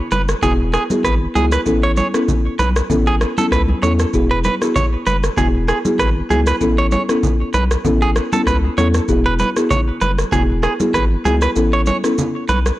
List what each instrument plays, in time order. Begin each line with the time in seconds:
0.11 sub bass F#1, clean electric guitar B4, high conga, shaker
0.29 cross-stick, shaker
0.42 sub bass E1, marimba B3 E4 F#4 G#4, clean electric guitar G#4, kick, low conga, shaker
0.74 clean electric guitar G#4, cross-stick, shaker
0.90 marimba B3 E4 F#4 G#4, high conga, shaker
1.04 sub bass G#1, clean electric guitar B4, kick, cross-stick, shaker
1.35 sub bass C#2, marimba B3 E4 F#4 G#4, clean electric guitar G#4, high conga, shaker
1.52 clean electric guitar B4, cross-stick, shaker
1.66 sub bass A1, marimba B3 C#4 E4 A4, kick, shaker
1.83 clean electric guitar C#5
1.97 clean electric guitar C#5, high conga, shaker
2.14 marimba B3 C#4 E4 A4, cross-stick, shaker
2.28 kick, low conga, shaker
2.59 sub bass B1, clean electric guitar B4, high conga, shaker
2.76 cross-stick, shaker
2.90 sub bass A1, marimba B3 C#4 E4 A4, kick, low conga, shaker
3.07 clean electric guitar G#4
3.21 cross-stick, shaker
3.38 marimba B3 C#4 E4 A4, clean electric guitar A4, high conga, shaker
3.52 sub bass C#2, clean electric guitar B4, kick, cross-stick, shaker
3.68 high conga
3.83 sub bass E2, marimba B3 C#4 E4 A4, clean electric guitar C#5, high conga, shaker
3.99 cross-stick, shaker
4.13 sub bass E1, marimba B3 E4 F#4 G#4, kick, shaker
4.31 clean electric guitar B4
4.44 clean electric guitar B4, high conga, shaker
4.61 marimba B3 E4 F#4 G#4, cross-stick, shaker
4.76 clean electric guitar C#5, kick, low conga, shaker
5.06 sub bass F#1, clean electric guitar B4, high conga, shaker
5.24 cross-stick, shaker
5.37 sub bass E1, marimba B3 E4 F#4 G#4, clean electric guitar G#4, kick, low conga, shaker
5.68 clean electric guitar G#4, cross-stick, shaker
5.85 marimba B3 E4 F#4 G#4, high conga, shaker
5.99 sub bass G#1, clean electric guitar B4, kick, cross-stick, shaker
6.30 sub bass C#2, marimba B3 E4 F#4 G#4, clean electric guitar G#4, high conga, shaker
6.47 clean electric guitar B4, cross-stick, shaker
6.61 sub bass A1, marimba B3 C#4 E4 A4, kick, shaker
6.78 clean electric guitar C#5
6.91 clean electric guitar C#5, high conga, shaker
7.09 marimba B3 C#4 E4 A4, cross-stick, shaker
7.23 kick, low conga, shaker
7.54 sub bass B1, clean electric guitar B4, high conga, shaker
7.71 cross-stick, shaker
7.85 sub bass A1, marimba B3 C#4 E4 A4, kick, low conga, shaker
8.02 clean electric guitar G#4
8.16 cross-stick, shaker
8.33 marimba B3 C#4 E4 A4, clean electric guitar A4, high conga, shaker
8.47 sub bass C#2, clean electric guitar B4, kick, cross-stick, shaker
8.77 sub bass E2, marimba B3 C#4 E4 A4, clean electric guitar C#5, high conga, shaker
8.94 cross-stick, shaker
9.08 sub bass E1, marimba B3 E4 F#4 G#4, kick, shaker
9.26 clean electric guitar B4
9.39 clean electric guitar B4, high conga, shaker
9.56 marimba B3 E4 F#4 G#4, cross-stick, shaker
9.71 clean electric guitar C#5, kick, low conga, shaker
10.01 sub bass F#1, clean electric guitar B4, high conga, shaker
10.19 cross-stick, shaker
10.32 sub bass E1, marimba B3 E4 F#4 G#4, clean electric guitar G#4, kick, low conga, shaker
10.63 clean electric guitar G#4, cross-stick, shaker
10.80 marimba B3 E4 F#4 G#4, high conga, shaker
10.94 sub bass G#1, clean electric guitar B4, kick, cross-stick, shaker
11.25 sub bass C#2, marimba B3 E4 F#4 G#4, clean electric guitar G#4, high conga, shaker
11.42 clean electric guitar B4, cross-stick, shaker
11.56 sub bass A1, marimba B3 C#4 E4 A4, shaker
11.73 clean electric guitar C#5
11.86 clean electric guitar C#5, high conga, shaker
12.04 marimba B3 C#4 E4 A4, cross-stick, shaker
12.18 low conga, shaker
12.49 sub bass B1, clean electric guitar B4, high conga, shaker
12.66 cross-stick, shaker